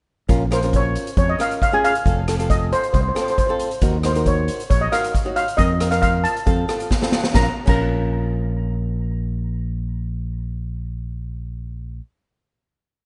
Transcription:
0.28 fingered electric bass A#1, nylon-string guitar C#4 F4 A#4, kick, closed hi-hat
0.51 nylon-string guitar C#4 F4 A#4, steel pan C5, cross-stick, closed hi-hat
0.62 nylon-string guitar C#4 F4 A#4, closed hi-hat
0.73 steel pan C#5, kick, closed hi-hat
0.95 closed hi-hat
1.07 closed hi-hat
1.17 fingered electric bass F2, steel pan C#5, kick, closed hi-hat
1.29 steel pan D#5
1.39 nylon-string guitar C#4 F4 A#4, steel pan F5, cross-stick, closed hi-hat
1.51 closed hi-hat
1.62 steel pan F5, kick, closed hi-hat
1.72 nylon-string guitar C#4 F4 G#4, steel pan G#5
1.84 steel pan F5, closed hi-hat
1.95 closed hi-hat
2.06 fingered electric bass F1, nylon-string guitar C4 F4 A4, kick, closed hi-hat
2.28 nylon-string guitar C4 F4 A4, cross-stick, closed hi-hat
2.39 nylon-string guitar C4 F4 A4, closed hi-hat
2.50 steel pan D#5, kick, closed hi-hat
2.72 steel pan C5, closed hi-hat
2.83 closed hi-hat
2.93 fingered electric bass C2, steel pan C5, kick, closed hi-hat
3.01 steel pan C5
3.08 steel pan C5
3.15 nylon-string guitar C4 F4 A4, steel pan C5, cross-stick, closed hi-hat
3.22 steel pan C5
3.28 steel pan C5, closed hi-hat
3.38 steel pan C5, kick, closed hi-hat
3.47 nylon-string guitar C4 F4 A4, steel pan C5
3.59 closed hi-hat
3.71 closed hi-hat
3.81 fingered electric bass D#2, nylon-string guitar D#4 F#4 A#4, kick, closed hi-hat
4.03 nylon-string guitar D#4 F#4 A#4, steel pan C5, cross-stick, closed hi-hat
4.15 nylon-string guitar D#4 F#4 A#4, closed hi-hat
4.26 steel pan C#5, kick, closed hi-hat
4.48 closed hi-hat
4.60 closed hi-hat
4.70 fingered electric bass A#1, steel pan C#5, kick, closed hi-hat
4.81 steel pan D#5
4.92 nylon-string guitar D#4 F#4 A#4, steel pan F5, cross-stick, closed hi-hat
5.04 closed hi-hat
5.15 kick, closed hi-hat
5.25 nylon-string guitar D#4 F#4 C#5
5.36 steel pan F5, closed hi-hat
5.48 closed hi-hat
5.57 fingered electric bass F2, nylon-string guitar C4 F4 A#4, steel pan D#5, kick, closed hi-hat
5.80 nylon-string guitar C4 F4 A#4, cross-stick, closed hi-hat
5.91 nylon-string guitar C4 F4 A#4, steel pan F5, cross-stick, closed hi-hat
6.02 steel pan F5, kick, closed hi-hat
6.24 steel pan A5, closed hi-hat
6.37 closed hi-hat
6.46 fingered electric bass F2, nylon-string guitar C4 F4 A4, kick, closed hi-hat
6.68 nylon-string guitar C4 F4 A4, cross-stick, closed hi-hat
6.80 closed hi-hat
6.91 kick, snare
7.01 nylon-string guitar C4 F4 A4, snare
7.12 snare
7.24 snare
7.32 fingered electric bass A#1, nylon-string guitar C#4 F4, steel pan A#5, kick, snare
7.36 nylon-string guitar A#4
7.66 fingered electric bass A#1, nylon-string guitar C#4 F4 A#4, steel pan A#5, kick, crash

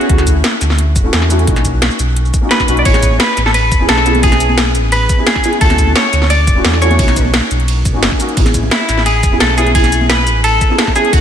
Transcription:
Already playing: felt piano B3 C#4 E4 G#4, clean electric guitar F#4
0.01 closed hi-hat
0.07 sub bass D2, felt piano A3 C#4 E4, kick, closed hi-hat
0.12 felt piano F#4
0.18 snare, closed hi-hat, cabasa
0.27 kick, closed hi-hat, cabasa
0.44 snare, closed hi-hat
0.61 sub bass D2, snare, closed hi-hat, cabasa
0.70 snare
0.78 closed hi-hat
0.96 sub bass D1, kick, closed hi-hat, cabasa
1.03 felt piano A3 C#4 E4 F#4
1.13 sub bass E2, snare, closed hi-hat
1.22 snare
1.29 felt piano A3 C#4 E4 F#4, closed hi-hat, cabasa
1.39 closed hi-hat
1.45 sub bass B1, felt piano A#3 C#4 D#4, kick, closed hi-hat
1.50 felt piano F#4
1.56 snare, closed hi-hat, cabasa
1.65 kick, closed hi-hat, cabasa
1.82 snare, closed hi-hat
1.91 cabasa
1.99 sub bass B1, closed hi-hat, cabasa
2.16 closed hi-hat
2.25 cabasa
2.34 kick, closed hi-hat, cabasa
2.41 felt piano A#3 C#4 D#4 F#4
2.51 clean electric guitar B4, snare, closed hi-hat
2.60 kick, snare, cabasa
2.67 sub bass B1, felt piano A#3 C#4 D#4 F#4, closed hi-hat, cabasa
2.77 clean electric guitar D5, closed hi-hat
2.82 sub bass A1, felt piano B3 C#4 E4, clean electric guitar C#5, kick, closed hi-hat, ride
2.88 felt piano G#4
2.94 snare, closed hi-hat, high conga, cabasa
3.03 kick, closed hi-hat, cabasa
3.11 high conga
3.20 clean electric guitar B4, snare, closed hi-hat, ride
3.37 sub bass A1, snare, closed hi-hat, cabasa
3.46 clean electric guitar A4, snare
3.54 clean electric guitar B4, closed hi-hat, ride
3.72 sub bass E1, kick, closed hi-hat, cabasa
3.79 felt piano B3 C#4 E4 G#4
3.89 sub bass B1, clean electric guitar A4, snare, closed hi-hat, ride
3.98 snare
4.04 felt piano B3 C#4 E4 G#4, closed hi-hat, cabasa
4.15 closed hi-hat, high conga
4.20 felt piano B3 C#4 E4, clean electric guitar G#4, kick, closed hi-hat, ride
4.26 felt piano G#4
4.32 snare, closed hi-hat, high conga, cabasa
4.40 closed hi-hat, cabasa
4.49 high conga
4.58 snare, closed hi-hat, ride
4.75 sub bass A1, closed hi-hat, cabasa
4.92 clean electric guitar B4, closed hi-hat, ride
5.09 kick, closed hi-hat, cabasa
5.17 felt piano B3 C#4 E4 G#4
5.27 clean electric guitar G#4, snare, closed hi-hat, ride
5.35 kick, snare
5.42 felt piano B3 C#4 E4 G#4, closed hi-hat, cabasa
5.53 closed hi-hat
5.58 sub bass D2, felt piano A3 C#4 E4, clean electric guitar A4, kick, closed hi-hat, ride
5.64 felt piano F#4
5.70 snare, closed hi-hat, high conga, cabasa
5.78 kick, closed hi-hat, cabasa
5.87 high conga
5.96 clean electric guitar C#5, snare, closed hi-hat, ride
6.13 sub bass D2, snare, closed hi-hat, cabasa
6.22 snare
6.30 clean electric guitar D5, closed hi-hat, ride
6.47 sub bass D1, kick, closed hi-hat, cabasa
6.55 felt piano A3 C#4 E4 F#4
6.65 sub bass E2, snare, closed hi-hat, ride
6.74 snare
6.80 felt piano A3 C#4 E4 F#4, clean electric guitar C#5, closed hi-hat, cabasa
6.91 closed hi-hat, high conga
6.96 sub bass B1, felt piano A#3 C#4 D#4, kick, closed hi-hat, ride
7.02 felt piano F#4
7.07 snare, closed hi-hat, high conga, cabasa
7.16 kick, closed hi-hat, cabasa
7.25 high conga
7.34 snare, closed hi-hat, ride
7.51 sub bass B1, closed hi-hat, cabasa
7.60 closed hi-hat
7.68 closed hi-hat, ride
7.85 sub bass B1, kick, closed hi-hat, cabasa
7.93 sub bass F#1, felt piano A#3 C#4 D#4 F#4
8.03 snare, closed hi-hat, ride
8.12 kick, snare
8.18 felt piano A#3 C#4 D#4 F#4, closed hi-hat, cabasa
8.29 closed hi-hat
8.34 sub bass A1, felt piano B3 C#4 E4, kick, closed hi-hat, ride
8.40 felt piano G#4
8.46 snare, closed hi-hat, high conga, cabasa
8.54 kick, closed hi-hat, cabasa
8.63 high conga
8.71 clean electric guitar E4, snare, closed hi-hat, ride
8.89 sub bass A1, snare, closed hi-hat, cabasa
8.98 snare
9.06 clean electric guitar G#4, closed hi-hat, ride
9.23 sub bass E1, kick, closed hi-hat, cabasa
9.31 felt piano B3 C#4 E4 G#4
9.40 sub bass B1, clean electric guitar A4, snare, closed hi-hat, ride
9.49 snare
9.56 felt piano B3 C#4 E4 G#4, clean electric guitar G#4, closed hi-hat, cabasa
9.66 closed hi-hat, high conga
9.72 felt piano B3 C#4 E4, clean electric guitar G#4, kick, closed hi-hat, ride
9.78 felt piano G#4
9.83 snare, closed hi-hat, high conga, cabasa
9.92 closed hi-hat, cabasa
10.01 high conga
10.09 clean electric guitar B4, snare, closed hi-hat, ride
10.27 sub bass A1, closed hi-hat, cabasa
10.44 clean electric guitar A4, closed hi-hat, ride
10.61 kick, closed hi-hat, cabasa
10.68 felt piano B3 C#4 E4 G#4
10.78 snare, closed hi-hat, ride
10.87 kick, snare
10.94 felt piano B3 C#4 E4 G#4, clean electric guitar G#4, closed hi-hat, cabasa
11.05 closed hi-hat
11.10 sub bass D2, felt piano A3 C#4 E4, clean electric guitar F#4, kick, closed hi-hat, ride
11.16 felt piano F#4

